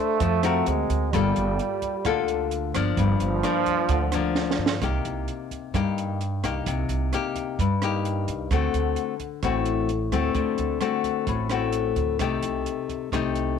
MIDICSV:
0, 0, Header, 1, 5, 480
1, 0, Start_track
1, 0, Tempo, 461184
1, 1180, Time_signature, 4, 2, 24, 8
1, 14146, End_track
2, 0, Start_track
2, 0, Title_t, "Nylon-string guitar"
2, 0, Program_c, 0, 24
2, 0, Note_on_c, 0, 62, 61
2, 0, Note_on_c, 0, 69, 60
2, 0, Note_on_c, 0, 72, 60
2, 220, Note_off_c, 0, 62, 0
2, 220, Note_off_c, 0, 69, 0
2, 220, Note_on_c, 0, 53, 58
2, 221, Note_off_c, 0, 72, 0
2, 454, Note_on_c, 0, 60, 62
2, 461, Note_on_c, 0, 66, 57
2, 465, Note_on_c, 0, 70, 67
2, 676, Note_off_c, 0, 53, 0
2, 1139, Note_off_c, 0, 60, 0
2, 1143, Note_off_c, 0, 66, 0
2, 1144, Note_off_c, 0, 70, 0
2, 1183, Note_on_c, 0, 55, 51
2, 1185, Note_on_c, 0, 58, 58
2, 1188, Note_on_c, 0, 65, 63
2, 1194, Note_on_c, 0, 69, 59
2, 2104, Note_off_c, 0, 58, 0
2, 2105, Note_off_c, 0, 65, 0
2, 2109, Note_off_c, 0, 69, 0
2, 2118, Note_off_c, 0, 55, 0
2, 2138, Note_on_c, 0, 50, 61
2, 2140, Note_on_c, 0, 58, 61
2, 2144, Note_on_c, 0, 65, 64
2, 2148, Note_on_c, 0, 69, 68
2, 2821, Note_off_c, 0, 58, 0
2, 2821, Note_off_c, 0, 65, 0
2, 2826, Note_off_c, 0, 69, 0
2, 2859, Note_on_c, 0, 53, 52
2, 2863, Note_on_c, 0, 58, 57
2, 2870, Note_on_c, 0, 62, 62
2, 3076, Note_off_c, 0, 50, 0
2, 3107, Note_on_c, 0, 43, 59
2, 3541, Note_off_c, 0, 53, 0
2, 3544, Note_off_c, 0, 58, 0
2, 3545, Note_off_c, 0, 62, 0
2, 3575, Note_on_c, 0, 53, 54
2, 3583, Note_on_c, 0, 58, 66
2, 3585, Note_on_c, 0, 62, 67
2, 4039, Note_off_c, 0, 43, 0
2, 4058, Note_on_c, 0, 50, 54
2, 4259, Note_off_c, 0, 53, 0
2, 4263, Note_off_c, 0, 58, 0
2, 4263, Note_off_c, 0, 62, 0
2, 4307, Note_on_c, 0, 53, 61
2, 4313, Note_on_c, 0, 58, 61
2, 4317, Note_on_c, 0, 62, 67
2, 4985, Note_off_c, 0, 53, 0
2, 4987, Note_off_c, 0, 58, 0
2, 4990, Note_off_c, 0, 62, 0
2, 4995, Note_off_c, 0, 50, 0
2, 5017, Note_on_c, 0, 48, 55
2, 5022, Note_on_c, 0, 58, 53
2, 5022, Note_on_c, 0, 63, 52
2, 5028, Note_on_c, 0, 67, 65
2, 5941, Note_off_c, 0, 63, 0
2, 5942, Note_off_c, 0, 58, 0
2, 5946, Note_off_c, 0, 67, 0
2, 5955, Note_off_c, 0, 48, 0
2, 5973, Note_on_c, 0, 43, 53
2, 5979, Note_on_c, 0, 58, 54
2, 5984, Note_on_c, 0, 63, 60
2, 5988, Note_on_c, 0, 67, 68
2, 6456, Note_off_c, 0, 58, 0
2, 6456, Note_off_c, 0, 63, 0
2, 6461, Note_off_c, 0, 67, 0
2, 6700, Note_on_c, 0, 58, 53
2, 6705, Note_on_c, 0, 63, 53
2, 6709, Note_on_c, 0, 67, 58
2, 6913, Note_off_c, 0, 43, 0
2, 6943, Note_on_c, 0, 48, 54
2, 7382, Note_off_c, 0, 58, 0
2, 7383, Note_off_c, 0, 63, 0
2, 7386, Note_off_c, 0, 67, 0
2, 7428, Note_on_c, 0, 58, 56
2, 7431, Note_on_c, 0, 63, 57
2, 7436, Note_on_c, 0, 67, 60
2, 7877, Note_off_c, 0, 48, 0
2, 7901, Note_off_c, 0, 58, 0
2, 7903, Note_off_c, 0, 63, 0
2, 7904, Note_off_c, 0, 67, 0
2, 7907, Note_on_c, 0, 43, 53
2, 8152, Note_on_c, 0, 58, 58
2, 8157, Note_on_c, 0, 63, 60
2, 8160, Note_on_c, 0, 67, 69
2, 8828, Note_off_c, 0, 58, 0
2, 8828, Note_off_c, 0, 63, 0
2, 8831, Note_off_c, 0, 67, 0
2, 8839, Note_off_c, 0, 43, 0
2, 8864, Note_on_c, 0, 50, 56
2, 8869, Note_on_c, 0, 57, 55
2, 8876, Note_on_c, 0, 60, 55
2, 8882, Note_on_c, 0, 66, 50
2, 9508, Note_off_c, 0, 57, 0
2, 9513, Note_off_c, 0, 60, 0
2, 9515, Note_off_c, 0, 66, 0
2, 9798, Note_off_c, 0, 50, 0
2, 9820, Note_on_c, 0, 45, 57
2, 9824, Note_on_c, 0, 57, 53
2, 9827, Note_on_c, 0, 60, 56
2, 9831, Note_on_c, 0, 66, 61
2, 10299, Note_off_c, 0, 57, 0
2, 10299, Note_off_c, 0, 60, 0
2, 10302, Note_off_c, 0, 66, 0
2, 10539, Note_on_c, 0, 57, 60
2, 10544, Note_on_c, 0, 60, 59
2, 10549, Note_on_c, 0, 66, 58
2, 10755, Note_off_c, 0, 45, 0
2, 10767, Note_on_c, 0, 50, 52
2, 11220, Note_off_c, 0, 57, 0
2, 11222, Note_off_c, 0, 60, 0
2, 11225, Note_off_c, 0, 66, 0
2, 11250, Note_on_c, 0, 57, 57
2, 11254, Note_on_c, 0, 60, 58
2, 11260, Note_on_c, 0, 66, 67
2, 11708, Note_off_c, 0, 50, 0
2, 11741, Note_on_c, 0, 45, 55
2, 11935, Note_off_c, 0, 57, 0
2, 11937, Note_off_c, 0, 60, 0
2, 11940, Note_off_c, 0, 66, 0
2, 11978, Note_on_c, 0, 57, 59
2, 11982, Note_on_c, 0, 60, 55
2, 11986, Note_on_c, 0, 66, 67
2, 12659, Note_off_c, 0, 57, 0
2, 12660, Note_off_c, 0, 60, 0
2, 12663, Note_off_c, 0, 66, 0
2, 12675, Note_off_c, 0, 45, 0
2, 12699, Note_on_c, 0, 57, 54
2, 12703, Note_on_c, 0, 48, 52
2, 12708, Note_on_c, 0, 63, 53
2, 12711, Note_on_c, 0, 67, 60
2, 13619, Note_off_c, 0, 57, 0
2, 13623, Note_off_c, 0, 63, 0
2, 13624, Note_off_c, 0, 67, 0
2, 13636, Note_off_c, 0, 48, 0
2, 13662, Note_on_c, 0, 48, 56
2, 13666, Note_on_c, 0, 57, 54
2, 13669, Note_on_c, 0, 63, 57
2, 13675, Note_on_c, 0, 67, 67
2, 14146, Note_off_c, 0, 48, 0
2, 14146, Note_off_c, 0, 57, 0
2, 14146, Note_off_c, 0, 63, 0
2, 14146, Note_off_c, 0, 67, 0
2, 14146, End_track
3, 0, Start_track
3, 0, Title_t, "Trombone"
3, 0, Program_c, 1, 57
3, 0, Note_on_c, 1, 57, 105
3, 711, Note_on_c, 1, 56, 107
3, 727, Note_off_c, 1, 57, 0
3, 1180, Note_on_c, 1, 55, 92
3, 1195, Note_off_c, 1, 56, 0
3, 2819, Note_off_c, 1, 55, 0
3, 3096, Note_on_c, 1, 53, 124
3, 4736, Note_off_c, 1, 53, 0
3, 14146, End_track
4, 0, Start_track
4, 0, Title_t, "Upright bass"
4, 0, Program_c, 2, 32
4, 211, Note_on_c, 2, 41, 96
4, 662, Note_off_c, 2, 41, 0
4, 699, Note_on_c, 2, 38, 103
4, 923, Note_off_c, 2, 38, 0
4, 933, Note_on_c, 2, 38, 84
4, 1160, Note_off_c, 2, 38, 0
4, 1177, Note_on_c, 2, 31, 106
4, 1402, Note_off_c, 2, 31, 0
4, 1422, Note_on_c, 2, 31, 91
4, 1644, Note_off_c, 2, 31, 0
4, 2137, Note_on_c, 2, 38, 98
4, 2817, Note_off_c, 2, 38, 0
4, 2854, Note_on_c, 2, 31, 85
4, 3080, Note_off_c, 2, 31, 0
4, 3093, Note_on_c, 2, 31, 103
4, 3320, Note_off_c, 2, 31, 0
4, 3327, Note_on_c, 2, 31, 95
4, 3557, Note_off_c, 2, 31, 0
4, 4044, Note_on_c, 2, 38, 94
4, 4730, Note_off_c, 2, 38, 0
4, 4770, Note_on_c, 2, 43, 87
4, 4998, Note_off_c, 2, 43, 0
4, 5012, Note_on_c, 2, 36, 90
4, 5239, Note_off_c, 2, 36, 0
4, 5255, Note_on_c, 2, 36, 87
4, 5481, Note_off_c, 2, 36, 0
4, 5971, Note_on_c, 2, 43, 84
4, 6654, Note_off_c, 2, 43, 0
4, 6695, Note_on_c, 2, 36, 77
4, 6920, Note_off_c, 2, 36, 0
4, 6937, Note_on_c, 2, 36, 93
4, 7161, Note_off_c, 2, 36, 0
4, 7169, Note_on_c, 2, 36, 90
4, 7397, Note_off_c, 2, 36, 0
4, 7897, Note_on_c, 2, 43, 99
4, 8576, Note_off_c, 2, 43, 0
4, 8614, Note_on_c, 2, 36, 76
4, 8840, Note_off_c, 2, 36, 0
4, 8852, Note_on_c, 2, 38, 98
4, 9079, Note_off_c, 2, 38, 0
4, 9094, Note_on_c, 2, 38, 84
4, 9319, Note_off_c, 2, 38, 0
4, 9809, Note_on_c, 2, 33, 93
4, 10492, Note_off_c, 2, 33, 0
4, 10530, Note_on_c, 2, 38, 71
4, 10757, Note_off_c, 2, 38, 0
4, 10767, Note_on_c, 2, 38, 86
4, 10995, Note_off_c, 2, 38, 0
4, 11016, Note_on_c, 2, 38, 87
4, 11240, Note_off_c, 2, 38, 0
4, 11730, Note_on_c, 2, 33, 92
4, 12412, Note_off_c, 2, 33, 0
4, 12446, Note_on_c, 2, 38, 81
4, 12674, Note_off_c, 2, 38, 0
4, 12689, Note_on_c, 2, 36, 97
4, 12916, Note_off_c, 2, 36, 0
4, 12931, Note_on_c, 2, 36, 79
4, 13157, Note_off_c, 2, 36, 0
4, 13654, Note_on_c, 2, 36, 87
4, 14146, Note_off_c, 2, 36, 0
4, 14146, End_track
5, 0, Start_track
5, 0, Title_t, "Drums"
5, 211, Note_on_c, 9, 42, 69
5, 214, Note_on_c, 9, 36, 65
5, 316, Note_off_c, 9, 42, 0
5, 318, Note_off_c, 9, 36, 0
5, 449, Note_on_c, 9, 37, 62
5, 449, Note_on_c, 9, 42, 45
5, 553, Note_off_c, 9, 37, 0
5, 553, Note_off_c, 9, 42, 0
5, 691, Note_on_c, 9, 42, 43
5, 795, Note_off_c, 9, 42, 0
5, 936, Note_on_c, 9, 36, 25
5, 937, Note_on_c, 9, 42, 47
5, 1040, Note_off_c, 9, 36, 0
5, 1041, Note_off_c, 9, 42, 0
5, 1178, Note_on_c, 9, 36, 58
5, 1178, Note_on_c, 9, 37, 64
5, 1178, Note_on_c, 9, 42, 56
5, 1282, Note_off_c, 9, 36, 0
5, 1283, Note_off_c, 9, 37, 0
5, 1283, Note_off_c, 9, 42, 0
5, 1415, Note_on_c, 9, 42, 41
5, 1519, Note_off_c, 9, 42, 0
5, 1657, Note_on_c, 9, 42, 40
5, 1762, Note_off_c, 9, 42, 0
5, 1894, Note_on_c, 9, 42, 39
5, 1895, Note_on_c, 9, 36, 23
5, 1998, Note_off_c, 9, 42, 0
5, 1999, Note_off_c, 9, 36, 0
5, 2131, Note_on_c, 9, 37, 58
5, 2131, Note_on_c, 9, 42, 60
5, 2134, Note_on_c, 9, 36, 63
5, 2235, Note_off_c, 9, 37, 0
5, 2235, Note_off_c, 9, 42, 0
5, 2239, Note_off_c, 9, 36, 0
5, 2375, Note_on_c, 9, 42, 45
5, 2479, Note_off_c, 9, 42, 0
5, 2615, Note_on_c, 9, 42, 44
5, 2719, Note_off_c, 9, 42, 0
5, 2855, Note_on_c, 9, 36, 25
5, 2857, Note_on_c, 9, 37, 62
5, 2857, Note_on_c, 9, 42, 43
5, 2959, Note_off_c, 9, 36, 0
5, 2961, Note_off_c, 9, 37, 0
5, 2961, Note_off_c, 9, 42, 0
5, 3094, Note_on_c, 9, 36, 62
5, 3094, Note_on_c, 9, 42, 54
5, 3198, Note_off_c, 9, 36, 0
5, 3198, Note_off_c, 9, 42, 0
5, 3332, Note_on_c, 9, 42, 50
5, 3436, Note_off_c, 9, 42, 0
5, 3574, Note_on_c, 9, 37, 64
5, 3574, Note_on_c, 9, 42, 41
5, 3678, Note_off_c, 9, 37, 0
5, 3678, Note_off_c, 9, 42, 0
5, 3812, Note_on_c, 9, 42, 38
5, 3813, Note_on_c, 9, 36, 23
5, 3916, Note_off_c, 9, 42, 0
5, 3917, Note_off_c, 9, 36, 0
5, 4046, Note_on_c, 9, 42, 61
5, 4051, Note_on_c, 9, 36, 66
5, 4150, Note_off_c, 9, 42, 0
5, 4155, Note_off_c, 9, 36, 0
5, 4288, Note_on_c, 9, 37, 66
5, 4288, Note_on_c, 9, 42, 48
5, 4392, Note_off_c, 9, 37, 0
5, 4392, Note_off_c, 9, 42, 0
5, 4528, Note_on_c, 9, 38, 44
5, 4632, Note_off_c, 9, 38, 0
5, 4690, Note_on_c, 9, 38, 49
5, 4794, Note_off_c, 9, 38, 0
5, 4851, Note_on_c, 9, 38, 73
5, 4955, Note_off_c, 9, 38, 0
5, 5013, Note_on_c, 9, 37, 62
5, 5013, Note_on_c, 9, 42, 52
5, 5014, Note_on_c, 9, 36, 60
5, 5117, Note_off_c, 9, 37, 0
5, 5117, Note_off_c, 9, 42, 0
5, 5118, Note_off_c, 9, 36, 0
5, 5256, Note_on_c, 9, 42, 39
5, 5360, Note_off_c, 9, 42, 0
5, 5494, Note_on_c, 9, 42, 35
5, 5598, Note_off_c, 9, 42, 0
5, 5735, Note_on_c, 9, 36, 22
5, 5739, Note_on_c, 9, 42, 35
5, 5840, Note_off_c, 9, 36, 0
5, 5843, Note_off_c, 9, 42, 0
5, 5976, Note_on_c, 9, 36, 55
5, 5979, Note_on_c, 9, 37, 55
5, 5979, Note_on_c, 9, 42, 55
5, 6081, Note_off_c, 9, 36, 0
5, 6083, Note_off_c, 9, 37, 0
5, 6083, Note_off_c, 9, 42, 0
5, 6224, Note_on_c, 9, 42, 42
5, 6328, Note_off_c, 9, 42, 0
5, 6461, Note_on_c, 9, 42, 40
5, 6565, Note_off_c, 9, 42, 0
5, 6697, Note_on_c, 9, 36, 24
5, 6700, Note_on_c, 9, 37, 61
5, 6700, Note_on_c, 9, 42, 41
5, 6801, Note_off_c, 9, 36, 0
5, 6804, Note_off_c, 9, 37, 0
5, 6804, Note_off_c, 9, 42, 0
5, 6935, Note_on_c, 9, 42, 59
5, 6936, Note_on_c, 9, 36, 59
5, 7039, Note_off_c, 9, 42, 0
5, 7040, Note_off_c, 9, 36, 0
5, 7172, Note_on_c, 9, 42, 42
5, 7277, Note_off_c, 9, 42, 0
5, 7418, Note_on_c, 9, 37, 52
5, 7418, Note_on_c, 9, 42, 41
5, 7522, Note_off_c, 9, 37, 0
5, 7522, Note_off_c, 9, 42, 0
5, 7656, Note_on_c, 9, 42, 44
5, 7657, Note_on_c, 9, 36, 22
5, 7760, Note_off_c, 9, 42, 0
5, 7761, Note_off_c, 9, 36, 0
5, 7899, Note_on_c, 9, 36, 60
5, 7905, Note_on_c, 9, 42, 63
5, 8003, Note_off_c, 9, 36, 0
5, 8009, Note_off_c, 9, 42, 0
5, 8137, Note_on_c, 9, 37, 60
5, 8137, Note_on_c, 9, 42, 45
5, 8241, Note_off_c, 9, 37, 0
5, 8241, Note_off_c, 9, 42, 0
5, 8380, Note_on_c, 9, 42, 46
5, 8484, Note_off_c, 9, 42, 0
5, 8615, Note_on_c, 9, 36, 23
5, 8617, Note_on_c, 9, 42, 44
5, 8719, Note_off_c, 9, 36, 0
5, 8721, Note_off_c, 9, 42, 0
5, 8855, Note_on_c, 9, 37, 54
5, 8855, Note_on_c, 9, 42, 57
5, 8856, Note_on_c, 9, 36, 53
5, 8960, Note_off_c, 9, 37, 0
5, 8960, Note_off_c, 9, 42, 0
5, 8961, Note_off_c, 9, 36, 0
5, 9097, Note_on_c, 9, 42, 42
5, 9201, Note_off_c, 9, 42, 0
5, 9328, Note_on_c, 9, 42, 39
5, 9432, Note_off_c, 9, 42, 0
5, 9572, Note_on_c, 9, 42, 37
5, 9573, Note_on_c, 9, 36, 21
5, 9676, Note_off_c, 9, 42, 0
5, 9677, Note_off_c, 9, 36, 0
5, 9811, Note_on_c, 9, 37, 60
5, 9811, Note_on_c, 9, 42, 54
5, 9813, Note_on_c, 9, 36, 55
5, 9915, Note_off_c, 9, 37, 0
5, 9915, Note_off_c, 9, 42, 0
5, 9917, Note_off_c, 9, 36, 0
5, 10049, Note_on_c, 9, 42, 41
5, 10154, Note_off_c, 9, 42, 0
5, 10293, Note_on_c, 9, 42, 41
5, 10397, Note_off_c, 9, 42, 0
5, 10531, Note_on_c, 9, 36, 22
5, 10535, Note_on_c, 9, 37, 57
5, 10535, Note_on_c, 9, 42, 39
5, 10635, Note_off_c, 9, 36, 0
5, 10639, Note_off_c, 9, 37, 0
5, 10639, Note_off_c, 9, 42, 0
5, 10768, Note_on_c, 9, 42, 52
5, 10770, Note_on_c, 9, 36, 55
5, 10872, Note_off_c, 9, 42, 0
5, 10874, Note_off_c, 9, 36, 0
5, 11010, Note_on_c, 9, 42, 38
5, 11114, Note_off_c, 9, 42, 0
5, 11246, Note_on_c, 9, 37, 58
5, 11246, Note_on_c, 9, 42, 44
5, 11351, Note_off_c, 9, 37, 0
5, 11351, Note_off_c, 9, 42, 0
5, 11490, Note_on_c, 9, 36, 20
5, 11492, Note_on_c, 9, 42, 41
5, 11594, Note_off_c, 9, 36, 0
5, 11596, Note_off_c, 9, 42, 0
5, 11728, Note_on_c, 9, 42, 58
5, 11729, Note_on_c, 9, 36, 62
5, 11832, Note_off_c, 9, 42, 0
5, 11833, Note_off_c, 9, 36, 0
5, 11964, Note_on_c, 9, 37, 65
5, 11964, Note_on_c, 9, 42, 43
5, 12068, Note_off_c, 9, 37, 0
5, 12068, Note_off_c, 9, 42, 0
5, 12202, Note_on_c, 9, 42, 46
5, 12306, Note_off_c, 9, 42, 0
5, 12449, Note_on_c, 9, 42, 39
5, 12450, Note_on_c, 9, 36, 24
5, 12553, Note_off_c, 9, 42, 0
5, 12554, Note_off_c, 9, 36, 0
5, 12691, Note_on_c, 9, 37, 61
5, 12691, Note_on_c, 9, 42, 60
5, 12692, Note_on_c, 9, 36, 53
5, 12795, Note_off_c, 9, 37, 0
5, 12795, Note_off_c, 9, 42, 0
5, 12796, Note_off_c, 9, 36, 0
5, 12932, Note_on_c, 9, 42, 49
5, 13036, Note_off_c, 9, 42, 0
5, 13178, Note_on_c, 9, 42, 45
5, 13282, Note_off_c, 9, 42, 0
5, 13417, Note_on_c, 9, 36, 22
5, 13422, Note_on_c, 9, 42, 38
5, 13521, Note_off_c, 9, 36, 0
5, 13526, Note_off_c, 9, 42, 0
5, 13658, Note_on_c, 9, 36, 56
5, 13664, Note_on_c, 9, 37, 62
5, 13664, Note_on_c, 9, 42, 56
5, 13762, Note_off_c, 9, 36, 0
5, 13768, Note_off_c, 9, 37, 0
5, 13768, Note_off_c, 9, 42, 0
5, 13900, Note_on_c, 9, 42, 39
5, 14004, Note_off_c, 9, 42, 0
5, 14146, End_track
0, 0, End_of_file